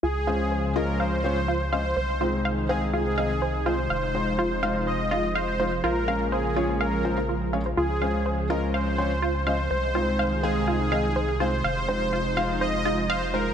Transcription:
0.03 C#2 C#3 F3 G#3 F4 G#4 C5
0.27 G#3 C#4 F4 C5 F5
0.52 C5
0.76 G#3 C#4 F4 A#4 D#5
1.00 C5 F5
1.24 G#3 C#4 F4 C5 C#5
1.48 F4
1.72 G#3 C#4 F4 C5 D#5 F5
1.97 C2 C3 D#3 D#4 G#4 C5
2.21 G#3 C4 D#4 F4 C5
2.45 F5
2.69 G#3 C4 D#4 G#4 C5 F5
2.93 F4 G#4
3.18 G#3 C4 D#4 D#5 F5
3.42 C5
3.66 G#3 C4 D#4 F4 C5 F5
3.90 F1 F3 F4 F5
4.14 G#3 D#4 F4 C5
4.39 F4
4.63 G#3 D#4 F4 F5
4.87 C5 D#5
5.11 G#3 D#4 F4 D#5
5.35 C5 F5
5.60 G#3 D#4 F4 C5 F5
5.84 A#1 C#3 A#3 F4 A#4
6.08 G#3 C#4 F4 A#4 F5
6.32 G#4 C5
6.56 G#3 C#4 F4 C#5
6.81 A#4 F5
7.05 G#3 C#4 F4 C5
7.18 F4
7.29 F4
7.53 G#3 C#4 F4 C#5 F5
7.66 C5
7.77 C#2 F4 G#4 C5
8.02 G#3 C#4 F4 C5 F5
8.26 C5
8.50 G#3 C#4 F4 A#4 D#5
8.74 C5 F5
8.98 G#3 C#4 F4 C5 C#5
9.22 F4
9.47 G#3 C#4 F4 C5 D#5 F5
9.71 C2 C3 D#3 G#3 D#4 G#4 C5
9.95 G#3 C4 D#4 F4 C5
10.19 F5
10.43 G#3 C4 D#4 G#4 C5 F5
10.68 F4 G#4
10.92 G#3 C4 D#4 D#5 F5
11.16 C5
11.40 G#3 C4 D#4 F4 C5 F5
11.64 F1 F3 G#3 D#4 F4 F5
11.89 G#3 D#4 F4 C5
12.13 F4
12.37 G#3 D#4 F4 F5
12.61 C5 D#5
12.85 G#3 D#4 F4 D#5
13.09 C5 F5
13.34 G#3 D#4 F4 A#4 C5 F5

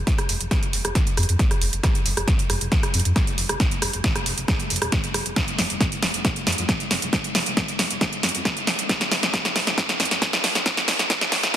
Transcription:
0.07 kick, snare, closed hi-hat
0.18 cross-stick, closed hi-hat
0.29 F1, open hi-hat
0.41 F1, closed hi-hat
0.51 kick, cross-stick, snare, closed hi-hat
0.63 closed hi-hat
0.73 F1, open hi-hat
0.85 F1, cross-stick, closed hi-hat
0.95 kick, snare, closed hi-hat
1.07 closed hi-hat
1.17 F2, cross-stick, open hi-hat
1.23 closed hi-hat
1.29 F2, closed hi-hat
1.39 kick, snare, closed hi-hat
1.51 cross-stick, closed hi-hat
1.61 F1, open hi-hat
1.73 F1, closed hi-hat
1.83 kick, cross-stick, snare, closed hi-hat
1.95 closed hi-hat
2.06 F1, open hi-hat
2.17 F1, cross-stick, closed hi-hat
2.28 kick, snare, closed hi-hat
2.39 closed hi-hat
2.50 F1, cross-stick, open hi-hat
2.61 F1, closed hi-hat
2.72 kick, snare, closed hi-hat
2.83 cross-stick, closed hi-hat
2.94 F2, open hi-hat
3.00 closed hi-hat
3.05 F2, closed hi-hat
3.16 kick, cross-stick, snare, closed hi-hat
3.27 closed hi-hat
3.38 F1, open hi-hat
3.49 F1, cross-stick, closed hi-hat
3.60 kick, snare, closed hi-hat
3.71 closed hi-hat
3.82 F1, cross-stick, open hi-hat
3.93 F1, closed hi-hat
4.04 kick, snare, closed hi-hat
4.16 cross-stick, closed hi-hat
4.26 F1, open hi-hat
4.38 F1, closed hi-hat
4.48 kick, cross-stick, snare, closed hi-hat
4.60 closed hi-hat
4.70 F1, open hi-hat
4.76 closed hi-hat
4.82 D#1, cross-stick, closed hi-hat
4.92 kick, snare, closed hi-hat
5.04 closed hi-hat
5.14 F1, cross-stick, open hi-hat
5.26 F1, closed hi-hat
5.36 kick, snare, closed hi-hat
5.48 closed hi-hat
5.58 F1, snare, open hi-hat
5.70 F1, closed hi-hat
5.81 kick, snare, closed hi-hat
5.92 closed hi-hat
6.03 F1, snare, open hi-hat
6.14 F1, closed hi-hat
6.25 kick, snare, closed hi-hat
6.36 closed hi-hat
6.47 F2, snare, open hi-hat
6.52 closed hi-hat
6.58 F2, closed hi-hat
6.69 kick, snare, closed hi-hat
6.80 closed hi-hat
6.91 F1, snare, open hi-hat
7.02 F1, closed hi-hat
7.13 kick, snare, closed hi-hat
7.24 closed hi-hat
7.35 F1, snare, open hi-hat
7.46 F1, closed hi-hat
7.57 kick, snare, closed hi-hat
7.68 closed hi-hat
7.79 F1, snare, open hi-hat
7.90 F1, closed hi-hat
8.01 kick, snare, closed hi-hat
8.13 closed hi-hat
8.23 F2, snare, open hi-hat
8.29 closed hi-hat
8.35 F2, closed hi-hat
8.45 kick, snare, closed hi-hat
8.57 closed hi-hat
8.67 F1, snare, open hi-hat
8.79 F1, closed hi-hat
8.89 kick, snare, closed hi-hat
9.01 snare, closed hi-hat
9.11 F1, snare, open hi-hat
9.23 F1, snare, closed hi-hat
9.34 kick, snare, closed hi-hat
9.45 snare, closed hi-hat
9.56 F1, snare, open hi-hat
9.67 F1, snare, closed hi-hat
9.78 kick, snare, closed hi-hat
9.89 snare, closed hi-hat
10.00 F2, snare, open hi-hat
10.05 closed hi-hat
10.11 F2, snare, closed hi-hat
10.22 kick, snare, closed hi-hat
10.33 snare, closed hi-hat
10.44 F1, snare, open hi-hat
10.55 F1, snare, closed hi-hat
10.66 kick, snare, closed hi-hat
10.77 snare, closed hi-hat
10.88 F1, snare, open hi-hat
10.99 F1, snare, closed hi-hat
11.10 kick, snare, closed hi-hat
11.21 snare, closed hi-hat
11.32 F1, snare, open hi-hat
11.43 F1, snare, closed hi-hat

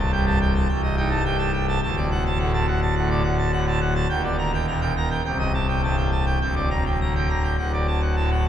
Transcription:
Already playing: C1 C2
0.00 A5
0.12 G2 G5
0.26 A5
0.41 G5
0.55 A5
0.69 C1 C2 G5
0.83 D#5
0.97 D#4 G5
1.11 A5
1.25 G2 G5
1.38 A5
1.53 G5
1.68 A5
1.83 D1 D2 A5
1.97 D5
2.12 F#5
2.26 A5
2.39 A2 F#5
2.54 A5
2.68 F#5
2.82 A5
2.97 A2 F#5
3.10 D5
3.24 F#5
3.38 A5
3.53 A2 F#5
3.67 A5
3.81 F#5
3.96 A5
4.09 D#1 D#2 G5
4.24 D5
4.38 A#5
4.54 G5
4.67 A#2 A#5
4.81 G5
4.97 A#5
5.10 G5
5.25 C1 C2 G5
5.39 D#5
5.54 A5
5.68 G5
5.83 G2 A5
5.97 G5
6.12 A5
6.26 G5
6.41 D1 D2 G5
6.56 D5
6.70 A#5
6.86 G5
7.01 D3 A#5
7.15 G5
7.29 A#5
7.43 G5
7.58 D1 D2 F#5
7.73 D5
7.87 A5
8.02 F#5
8.16 A2 A5
8.32 F#5

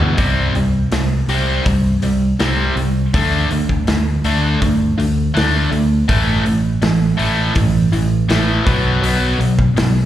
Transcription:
Already playing: D2 E2 B2 E3
0.00 floor tom
0.18 C2 C3 G3 C4, kick, open hi-hat
0.54 C2 C3 G3, open hi-hat
0.91 C2 C3 G3, snare, open hi-hat
1.28 C2 C3 G3 C4, open hi-hat
1.65 C2 C3 G3, kick, open hi-hat
2.02 C2 C3 G3, open hi-hat
2.39 C2 C3 G3 C4, snare, open hi-hat
2.76 C2 C3 G3, open hi-hat
3.14 D2 D3 A3 D4, kick, open hi-hat
3.51 D2 D3 A3, open hi-hat
3.69 kick
3.87 D2 D3 A3, snare, open hi-hat
4.24 D2 D3 A3 D4, open hi-hat
4.61 D2 D3 A3, kick, open hi-hat
4.98 D2 D3 A3, open hi-hat
5.34 D2 D3 A3 D4, snare, open hi-hat
5.71 D2 D3 A3, open hi-hat
6.08 A1 A2 E3 A3, kick, open hi-hat
6.44 A1 A2 E3, open hi-hat
6.82 A1 A2 E3, snare, open hi-hat
7.17 A1 A2 E3 A3, open hi-hat
7.55 A1 A2 E3, kick, open hi-hat
7.92 A1 A2 E3, open hi-hat
8.28 A1 A2 E3 A3, snare, open hi-hat
8.65 B1 B2 F#3 B3, kick, open hi-hat
9.02 B1 B2 F#3 B3, open hi-hat
9.39 B1 B2 F#3, open hi-hat
9.59 kick
9.74 B1 B2 F#3, snare, open hi-hat

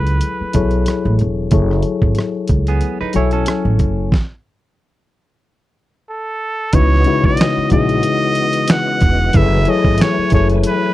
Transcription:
Already playing: C#2 F#3 E4 G#4 A4 B4
0.07 closed hi-hat
0.21 closed hi-hat
0.41 muted upright bass stroke
0.53 B1 F#3 E4 G#4 A4 C#5, kick, closed hi-hat
0.71 closed hi-hat
0.86 cross-stick, closed hi-hat
1.05 A1
1.19 E1, closed hi-hat
1.51 F#1 F#3 E4 G#4 A4 C#5, kick, closed hi-hat
1.71 cross-stick
1.83 closed hi-hat
2.02 G#1, kick
2.15 cross-stick, closed hi-hat
2.48 C#2, kick, closed hi-hat
2.67 B3 G#4, closed hi-hat
2.81 closed hi-hat
3.01 D#4 B4, muted upright bass stroke
3.13 B1 F#3 E4 A4 C#5 G#5, closed hi-hat
3.31 C#4 A4, closed hi-hat
3.46 cross-stick, closed hi-hat
3.65 A1
3.79 F#1, kick, closed hi-hat
4.12 kick, snare
6.09 A4
6.73 C#2 C#3 E3 G#3 B3 D#4 E4 F#4 B4 C#5 D#5, kick, closed hi-hat
6.94 snare
7.04 C#3 G#3 D#4 E4 F#4 B4, closed hi-hat
7.14 C#5
7.24 B1 D#5, kick
7.37 snare, closed hi-hat
7.42 finger snap
7.57 muted upright bass stroke
7.70 A#1 C#3 G#3 D#4 E4 F#4 G#4 D#5, kick, closed hi-hat
7.89 closed hi-hat
8.03 closed hi-hat
8.35 closed hi-hat
8.53 closed hi-hat
8.68 F#5, finger snap, snare, closed hi-hat
9.01 E1, kick, closed hi-hat
9.33 F#1 F#3 A3 E4 G#4 A4 B4 E5 G#5, kick, closed hi-hat
9.55 snare
9.65 F#3 E4 G#4 A4 C#5, closed hi-hat
9.70 D#5
9.84 G#1, kick
9.98 C#5, snare, closed hi-hat
10.02 finger snap
10.18 muted upright bass stroke
10.30 F#1 F#3 E4 G#4 A4 C#5, kick, closed hi-hat
10.35 C#5
10.50 closed hi-hat
10.64 closed hi-hat
10.68 B4

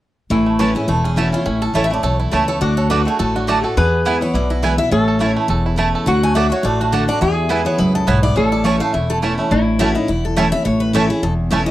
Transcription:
0.30 A1 A2 E3 E4
0.46 A3
0.59 E3 A3 C#4 E4 B4 C#5 A5
0.75 C#4 E4 G#4
0.88 E1 E2 A3 A4
1.04 C#4 G#4
1.16 E3 A3 C#4 E4 F#4 C#5 A5
1.32 C#4 E4 F4
1.46 A1 A2 C#4 E4
1.62 A4
1.74 A1 E3 A3 C#4 E4 C#5 A5
1.84 E5
1.90 A3 C#4 E4 D5
2.03 B1 E2 A4 C#5
2.20 E4
2.31 C#2 E3 A3 C#4 E4 A4 C#5 A5
2.48 A4 C#5
2.61 D2 D3 D4 F#4 D5
2.77 A4 C#5
2.90 D3 A3 D4 F#4 B4 D5 A5
3.05 A3 D4 F#4 G#4
3.19 A1 A2 A4
3.36 D4 F#4
3.47 D3 A3 D4 F#4 D5 A5
3.64 D4 F#4 A4
3.77 E2 B3 G#4 B4
4.05 E3 G#3 B3 E4 B4 G#5
4.21 B3 E4 C#5
4.34 B1 B2 E4 D5
4.50 E4 F#4
4.62 E3 G#3 B3 E4 B4 G#5
4.78 B3 E4 E5
4.91 A1 A2 C#4 A4 C#5
5.08 A4
5.19 E3 A3 C#4 E4 C#5 A5
5.37 A3
5.48 E1 E2 A4
5.66 E4
5.76 E3 A3 C#4 E4 C#5 A5
5.95 A4
6.06 D2 D3 F#3 F#4 F#5
6.23 A3 G#5
6.34 D3 F#3 A3 D4 F#4 D5 E5 A5
6.50 D4 F#4 C#5
6.63 A1 A2 A3 D5
6.81 D4 F#4
6.92 D3 A3 D4 F#4 A4 D5 A5
7.08 D4 F#4 D5
7.21 E2 E4 G#4 E5
7.49 E3 G#3 B3 E4 B4 G#5
7.65 B3 E4 C#5
7.78 C#2 F#2 E4 B4
7.95 E4 A4
8.07 B1 G#2 B3 E4 B4 C#5 G#5
8.23 E4 D5
8.36 A1 A2 C#4 A4 C#5
8.52 A4 D5
8.64 E3 A3 C#4 E4 C#5 E5 A5
8.80 A3 C#4 E4 F5
8.93 E1 E2 E4 E5
9.10 A3 A4
9.22 E3 A3 C#4 E4 C#5 A5
9.38 A3 C#4 E4
9.51 A1 A2 E4
9.79 E3 A3 C#4 E4 F#4 C#5 A5
9.95 C#4 D#4 E4
10.08 E1 E2 E4
10.25 A4
10.36 E3 A3 C#4 E4 C#5 A5
10.52 C#4 E4 E5
10.65 A1 A2 C#5
10.80 B4
10.93 E3 A3 C#4 E4 A4 C#5 A5
11.10 C#4 E4 G#4
11.23 E1 E2 A4
11.51 E3 A3 C#4 E4 C#5 A5
11.66 E4 D#5

